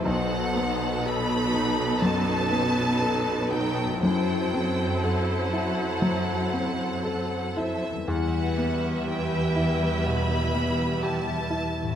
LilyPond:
<<
  \new Staff \with { instrumentName = "Violin section" } { \time 4/4 \key e \minor \tempo 4 = 60 fis''4 b''4 a''4. g''8 | g''4 fis''2~ fis''8 e''8 | fis''4 g''4 b''4 a''4 | }
  \new Staff \with { instrumentName = "Violin section" } { \time 4/4 \key e \minor << { c''4 b'2. | c''1 | e''1 | } \\ { a'1 | a'1 | b'1 | } >> }
  \new Staff \with { instrumentName = "Grand piano" } { \time 4/4 \key e \minor b,,8 b8 a'8 dis'8 fis,8 b8 a'8 dis'8 | fis,8 c'8 a'8 e'8 fis8 c'8 a'8 e'8 | e,8 b8 g'8 e'8 b,8 b8 g'8 e'8 | }
  \new Staff \with { instrumentName = "Viola section" } { \time 4/4 \key e \minor <fis dis'>1 | <fis e'>1 | <g e'>1 | }
  \new Staff \with { instrumentName = "Harp" } { \time 4/4 \key e \minor <b, fis b dis'>1 | <fis, a e' c''>1 | <e, g e' b'>1 | }
  \new Staff \with { instrumentName = "Cello section" } { \clef bass \time 4/4 \key e \minor b,1 | fis,1 | e,1 | }
>>